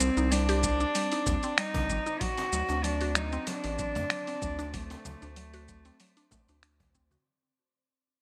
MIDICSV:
0, 0, Header, 1, 7, 480
1, 0, Start_track
1, 0, Tempo, 631579
1, 1681, Time_signature, 4, 2, 24, 8
1, 6244, End_track
2, 0, Start_track
2, 0, Title_t, "Synth texture"
2, 0, Program_c, 0, 99
2, 0, Note_on_c, 0, 60, 81
2, 0, Note_on_c, 0, 74, 79
2, 5530, Note_off_c, 0, 74, 0
2, 5533, Note_off_c, 0, 60, 0
2, 6244, End_track
3, 0, Start_track
3, 0, Title_t, "Cello"
3, 0, Program_c, 1, 42
3, 0, Note_on_c, 1, 60, 113
3, 240, Note_on_c, 1, 62, 113
3, 251, Note_off_c, 1, 60, 0
3, 1204, Note_on_c, 1, 63, 110
3, 1215, Note_off_c, 1, 62, 0
3, 1681, Note_on_c, 1, 66, 127
3, 1692, Note_off_c, 1, 63, 0
3, 2159, Note_on_c, 1, 62, 114
3, 2171, Note_off_c, 1, 66, 0
3, 2401, Note_on_c, 1, 63, 101
3, 2412, Note_off_c, 1, 62, 0
3, 2643, Note_on_c, 1, 62, 120
3, 2654, Note_off_c, 1, 63, 0
3, 3606, Note_on_c, 1, 57, 116
3, 3618, Note_off_c, 1, 62, 0
3, 5044, Note_off_c, 1, 57, 0
3, 6244, End_track
4, 0, Start_track
4, 0, Title_t, "Synth pluck"
4, 0, Program_c, 2, 84
4, 3, Note_on_c, 2, 55, 75
4, 75, Note_off_c, 2, 55, 0
4, 131, Note_on_c, 2, 63, 79
4, 236, Note_off_c, 2, 63, 0
4, 242, Note_on_c, 2, 55, 85
4, 363, Note_off_c, 2, 55, 0
4, 372, Note_on_c, 2, 67, 105
4, 434, Note_off_c, 2, 67, 0
4, 484, Note_on_c, 2, 55, 82
4, 556, Note_off_c, 2, 55, 0
4, 612, Note_on_c, 2, 62, 102
4, 717, Note_off_c, 2, 62, 0
4, 724, Note_on_c, 2, 55, 86
4, 844, Note_off_c, 2, 55, 0
4, 854, Note_on_c, 2, 63, 71
4, 952, Note_off_c, 2, 63, 0
4, 965, Note_on_c, 2, 55, 76
4, 1036, Note_off_c, 2, 55, 0
4, 1091, Note_on_c, 2, 60, 102
4, 1191, Note_off_c, 2, 60, 0
4, 1204, Note_on_c, 2, 55, 85
4, 1324, Note_off_c, 2, 55, 0
4, 1332, Note_on_c, 2, 62, 77
4, 1437, Note_off_c, 2, 62, 0
4, 1444, Note_on_c, 2, 55, 79
4, 1515, Note_off_c, 2, 55, 0
4, 1569, Note_on_c, 2, 63, 100
4, 1676, Note_off_c, 2, 63, 0
4, 1677, Note_on_c, 2, 54, 84
4, 1752, Note_off_c, 2, 54, 0
4, 1807, Note_on_c, 2, 60, 78
4, 1909, Note_off_c, 2, 60, 0
4, 1919, Note_on_c, 2, 54, 76
4, 1993, Note_off_c, 2, 54, 0
4, 2045, Note_on_c, 2, 62, 73
4, 2154, Note_off_c, 2, 62, 0
4, 2159, Note_on_c, 2, 54, 84
4, 2282, Note_off_c, 2, 54, 0
4, 2290, Note_on_c, 2, 66, 103
4, 2353, Note_off_c, 2, 66, 0
4, 2399, Note_on_c, 2, 54, 83
4, 2473, Note_off_c, 2, 54, 0
4, 2528, Note_on_c, 2, 60, 103
4, 2635, Note_off_c, 2, 60, 0
4, 2641, Note_on_c, 2, 54, 86
4, 2763, Note_off_c, 2, 54, 0
4, 2769, Note_on_c, 2, 62, 76
4, 2870, Note_off_c, 2, 62, 0
4, 2881, Note_on_c, 2, 54, 76
4, 2954, Note_off_c, 2, 54, 0
4, 3009, Note_on_c, 2, 57, 106
4, 3110, Note_off_c, 2, 57, 0
4, 3122, Note_on_c, 2, 54, 82
4, 3243, Note_off_c, 2, 54, 0
4, 3251, Note_on_c, 2, 60, 79
4, 3356, Note_off_c, 2, 60, 0
4, 3357, Note_on_c, 2, 54, 76
4, 3432, Note_off_c, 2, 54, 0
4, 3486, Note_on_c, 2, 62, 106
4, 3594, Note_off_c, 2, 62, 0
4, 3601, Note_on_c, 2, 54, 86
4, 3674, Note_off_c, 2, 54, 0
4, 3728, Note_on_c, 2, 60, 75
4, 3829, Note_off_c, 2, 60, 0
4, 3840, Note_on_c, 2, 54, 75
4, 3914, Note_off_c, 2, 54, 0
4, 3968, Note_on_c, 2, 62, 77
4, 4075, Note_off_c, 2, 62, 0
4, 4080, Note_on_c, 2, 54, 86
4, 4202, Note_off_c, 2, 54, 0
4, 4208, Note_on_c, 2, 66, 101
4, 4272, Note_off_c, 2, 66, 0
4, 4321, Note_on_c, 2, 54, 86
4, 4394, Note_off_c, 2, 54, 0
4, 4449, Note_on_c, 2, 60, 97
4, 4556, Note_off_c, 2, 60, 0
4, 4562, Note_on_c, 2, 54, 86
4, 4683, Note_off_c, 2, 54, 0
4, 4689, Note_on_c, 2, 62, 79
4, 4790, Note_off_c, 2, 62, 0
4, 4801, Note_on_c, 2, 57, 103
4, 4916, Note_off_c, 2, 57, 0
4, 4932, Note_on_c, 2, 62, 77
4, 4994, Note_off_c, 2, 62, 0
4, 5040, Note_on_c, 2, 62, 83
4, 5156, Note_off_c, 2, 62, 0
4, 5167, Note_on_c, 2, 54, 78
4, 5269, Note_off_c, 2, 54, 0
4, 5280, Note_on_c, 2, 60, 95
4, 5402, Note_off_c, 2, 60, 0
4, 5407, Note_on_c, 2, 66, 79
4, 5509, Note_off_c, 2, 66, 0
4, 6244, End_track
5, 0, Start_track
5, 0, Title_t, "Analog synth bass"
5, 0, Program_c, 3, 38
5, 3, Note_on_c, 3, 36, 99
5, 79, Note_off_c, 3, 36, 0
5, 129, Note_on_c, 3, 36, 92
5, 650, Note_off_c, 3, 36, 0
5, 963, Note_on_c, 3, 39, 87
5, 1039, Note_off_c, 3, 39, 0
5, 1331, Note_on_c, 3, 36, 87
5, 1442, Note_on_c, 3, 31, 84
5, 1453, Note_off_c, 3, 36, 0
5, 1519, Note_off_c, 3, 31, 0
5, 1920, Note_on_c, 3, 38, 103
5, 1998, Note_off_c, 3, 38, 0
5, 2048, Note_on_c, 3, 38, 90
5, 2570, Note_off_c, 3, 38, 0
5, 2771, Note_on_c, 3, 33, 90
5, 3009, Note_on_c, 3, 42, 101
5, 3020, Note_off_c, 3, 33, 0
5, 3077, Note_off_c, 3, 42, 0
5, 3362, Note_on_c, 3, 38, 88
5, 3771, Note_off_c, 3, 38, 0
5, 3843, Note_on_c, 3, 38, 99
5, 3920, Note_off_c, 3, 38, 0
5, 3971, Note_on_c, 3, 38, 85
5, 4491, Note_off_c, 3, 38, 0
5, 4929, Note_on_c, 3, 38, 82
5, 5450, Note_off_c, 3, 38, 0
5, 6244, End_track
6, 0, Start_track
6, 0, Title_t, "Cajon"
6, 960, Note_on_c, 9, 38, 54
6, 1036, Note_off_c, 9, 38, 0
6, 1325, Note_on_c, 9, 36, 86
6, 1401, Note_off_c, 9, 36, 0
6, 1810, Note_on_c, 9, 38, 81
6, 1886, Note_off_c, 9, 38, 0
6, 2041, Note_on_c, 9, 38, 57
6, 2117, Note_off_c, 9, 38, 0
6, 2637, Note_on_c, 9, 38, 66
6, 2713, Note_off_c, 9, 38, 0
6, 3009, Note_on_c, 9, 36, 83
6, 3085, Note_off_c, 9, 36, 0
6, 3487, Note_on_c, 9, 38, 58
6, 3563, Note_off_c, 9, 38, 0
6, 3732, Note_on_c, 9, 38, 76
6, 3808, Note_off_c, 9, 38, 0
6, 3839, Note_on_c, 9, 36, 74
6, 3915, Note_off_c, 9, 36, 0
6, 4796, Note_on_c, 9, 38, 59
6, 4872, Note_off_c, 9, 38, 0
6, 5168, Note_on_c, 9, 36, 83
6, 5244, Note_off_c, 9, 36, 0
6, 5403, Note_on_c, 9, 36, 76
6, 5479, Note_off_c, 9, 36, 0
6, 6244, End_track
7, 0, Start_track
7, 0, Title_t, "Drums"
7, 1, Note_on_c, 9, 82, 72
7, 77, Note_off_c, 9, 82, 0
7, 130, Note_on_c, 9, 82, 30
7, 206, Note_off_c, 9, 82, 0
7, 241, Note_on_c, 9, 46, 62
7, 242, Note_on_c, 9, 82, 43
7, 317, Note_off_c, 9, 46, 0
7, 318, Note_off_c, 9, 82, 0
7, 370, Note_on_c, 9, 46, 43
7, 371, Note_on_c, 9, 82, 22
7, 446, Note_off_c, 9, 46, 0
7, 447, Note_off_c, 9, 82, 0
7, 481, Note_on_c, 9, 82, 80
7, 482, Note_on_c, 9, 36, 64
7, 557, Note_off_c, 9, 82, 0
7, 558, Note_off_c, 9, 36, 0
7, 611, Note_on_c, 9, 82, 33
7, 687, Note_off_c, 9, 82, 0
7, 722, Note_on_c, 9, 46, 64
7, 722, Note_on_c, 9, 82, 44
7, 798, Note_off_c, 9, 46, 0
7, 798, Note_off_c, 9, 82, 0
7, 848, Note_on_c, 9, 46, 46
7, 849, Note_on_c, 9, 82, 21
7, 924, Note_off_c, 9, 46, 0
7, 925, Note_off_c, 9, 82, 0
7, 961, Note_on_c, 9, 82, 74
7, 962, Note_on_c, 9, 36, 110
7, 1037, Note_off_c, 9, 82, 0
7, 1038, Note_off_c, 9, 36, 0
7, 1086, Note_on_c, 9, 46, 29
7, 1087, Note_on_c, 9, 82, 33
7, 1162, Note_off_c, 9, 46, 0
7, 1163, Note_off_c, 9, 82, 0
7, 1199, Note_on_c, 9, 26, 70
7, 1199, Note_on_c, 9, 46, 64
7, 1200, Note_on_c, 9, 82, 40
7, 1275, Note_off_c, 9, 26, 0
7, 1275, Note_off_c, 9, 46, 0
7, 1276, Note_off_c, 9, 82, 0
7, 1328, Note_on_c, 9, 46, 49
7, 1328, Note_on_c, 9, 82, 23
7, 1329, Note_on_c, 9, 36, 107
7, 1404, Note_off_c, 9, 46, 0
7, 1404, Note_off_c, 9, 82, 0
7, 1405, Note_off_c, 9, 36, 0
7, 1441, Note_on_c, 9, 36, 60
7, 1441, Note_on_c, 9, 82, 69
7, 1517, Note_off_c, 9, 36, 0
7, 1517, Note_off_c, 9, 82, 0
7, 1569, Note_on_c, 9, 82, 33
7, 1645, Note_off_c, 9, 82, 0
7, 1680, Note_on_c, 9, 46, 71
7, 1681, Note_on_c, 9, 36, 110
7, 1681, Note_on_c, 9, 82, 42
7, 1756, Note_off_c, 9, 46, 0
7, 1757, Note_off_c, 9, 36, 0
7, 1757, Note_off_c, 9, 82, 0
7, 1805, Note_on_c, 9, 46, 48
7, 1806, Note_on_c, 9, 82, 23
7, 1881, Note_off_c, 9, 46, 0
7, 1882, Note_off_c, 9, 82, 0
7, 1919, Note_on_c, 9, 82, 74
7, 1995, Note_off_c, 9, 82, 0
7, 2047, Note_on_c, 9, 82, 31
7, 2123, Note_off_c, 9, 82, 0
7, 2159, Note_on_c, 9, 46, 65
7, 2160, Note_on_c, 9, 82, 39
7, 2235, Note_off_c, 9, 46, 0
7, 2236, Note_off_c, 9, 82, 0
7, 2285, Note_on_c, 9, 46, 45
7, 2286, Note_on_c, 9, 82, 23
7, 2361, Note_off_c, 9, 46, 0
7, 2362, Note_off_c, 9, 82, 0
7, 2397, Note_on_c, 9, 26, 75
7, 2398, Note_on_c, 9, 82, 75
7, 2473, Note_off_c, 9, 26, 0
7, 2474, Note_off_c, 9, 82, 0
7, 2526, Note_on_c, 9, 82, 34
7, 2602, Note_off_c, 9, 82, 0
7, 2636, Note_on_c, 9, 46, 72
7, 2637, Note_on_c, 9, 82, 43
7, 2712, Note_off_c, 9, 46, 0
7, 2713, Note_off_c, 9, 82, 0
7, 2764, Note_on_c, 9, 46, 47
7, 2765, Note_on_c, 9, 82, 22
7, 2840, Note_off_c, 9, 46, 0
7, 2841, Note_off_c, 9, 82, 0
7, 2878, Note_on_c, 9, 82, 74
7, 2880, Note_on_c, 9, 36, 101
7, 2954, Note_off_c, 9, 82, 0
7, 2956, Note_off_c, 9, 36, 0
7, 3004, Note_on_c, 9, 46, 33
7, 3005, Note_on_c, 9, 82, 33
7, 3080, Note_off_c, 9, 46, 0
7, 3081, Note_off_c, 9, 82, 0
7, 3117, Note_on_c, 9, 26, 70
7, 3117, Note_on_c, 9, 46, 66
7, 3118, Note_on_c, 9, 82, 39
7, 3193, Note_off_c, 9, 26, 0
7, 3193, Note_off_c, 9, 46, 0
7, 3194, Note_off_c, 9, 82, 0
7, 3248, Note_on_c, 9, 46, 48
7, 3249, Note_on_c, 9, 82, 23
7, 3324, Note_off_c, 9, 46, 0
7, 3325, Note_off_c, 9, 82, 0
7, 3360, Note_on_c, 9, 82, 69
7, 3361, Note_on_c, 9, 36, 101
7, 3436, Note_off_c, 9, 82, 0
7, 3437, Note_off_c, 9, 36, 0
7, 3490, Note_on_c, 9, 82, 34
7, 3566, Note_off_c, 9, 82, 0
7, 3600, Note_on_c, 9, 46, 75
7, 3601, Note_on_c, 9, 82, 45
7, 3602, Note_on_c, 9, 36, 113
7, 3676, Note_off_c, 9, 46, 0
7, 3677, Note_off_c, 9, 82, 0
7, 3678, Note_off_c, 9, 36, 0
7, 3726, Note_on_c, 9, 46, 48
7, 3727, Note_on_c, 9, 82, 24
7, 3802, Note_off_c, 9, 46, 0
7, 3803, Note_off_c, 9, 82, 0
7, 3840, Note_on_c, 9, 82, 73
7, 3916, Note_off_c, 9, 82, 0
7, 3968, Note_on_c, 9, 46, 31
7, 3968, Note_on_c, 9, 82, 30
7, 4044, Note_off_c, 9, 46, 0
7, 4044, Note_off_c, 9, 82, 0
7, 4076, Note_on_c, 9, 46, 70
7, 4077, Note_on_c, 9, 82, 42
7, 4152, Note_off_c, 9, 46, 0
7, 4153, Note_off_c, 9, 82, 0
7, 4207, Note_on_c, 9, 46, 45
7, 4208, Note_on_c, 9, 82, 22
7, 4283, Note_off_c, 9, 46, 0
7, 4284, Note_off_c, 9, 82, 0
7, 4320, Note_on_c, 9, 82, 78
7, 4322, Note_on_c, 9, 36, 63
7, 4396, Note_off_c, 9, 82, 0
7, 4398, Note_off_c, 9, 36, 0
7, 4446, Note_on_c, 9, 46, 32
7, 4447, Note_on_c, 9, 82, 33
7, 4522, Note_off_c, 9, 46, 0
7, 4523, Note_off_c, 9, 82, 0
7, 4558, Note_on_c, 9, 46, 75
7, 4559, Note_on_c, 9, 82, 43
7, 4634, Note_off_c, 9, 46, 0
7, 4635, Note_off_c, 9, 82, 0
7, 4688, Note_on_c, 9, 46, 48
7, 4689, Note_on_c, 9, 82, 22
7, 4764, Note_off_c, 9, 46, 0
7, 4765, Note_off_c, 9, 82, 0
7, 4801, Note_on_c, 9, 82, 74
7, 4803, Note_on_c, 9, 36, 106
7, 4877, Note_off_c, 9, 82, 0
7, 4879, Note_off_c, 9, 36, 0
7, 4929, Note_on_c, 9, 46, 34
7, 4929, Note_on_c, 9, 82, 33
7, 5005, Note_off_c, 9, 46, 0
7, 5005, Note_off_c, 9, 82, 0
7, 5038, Note_on_c, 9, 26, 72
7, 5038, Note_on_c, 9, 46, 71
7, 5039, Note_on_c, 9, 82, 42
7, 5114, Note_off_c, 9, 26, 0
7, 5114, Note_off_c, 9, 46, 0
7, 5115, Note_off_c, 9, 82, 0
7, 5170, Note_on_c, 9, 36, 106
7, 5170, Note_on_c, 9, 46, 50
7, 5171, Note_on_c, 9, 82, 23
7, 5246, Note_off_c, 9, 36, 0
7, 5246, Note_off_c, 9, 46, 0
7, 5247, Note_off_c, 9, 82, 0
7, 5280, Note_on_c, 9, 82, 73
7, 5281, Note_on_c, 9, 36, 64
7, 5356, Note_off_c, 9, 82, 0
7, 5357, Note_off_c, 9, 36, 0
7, 5407, Note_on_c, 9, 82, 34
7, 5483, Note_off_c, 9, 82, 0
7, 6244, End_track
0, 0, End_of_file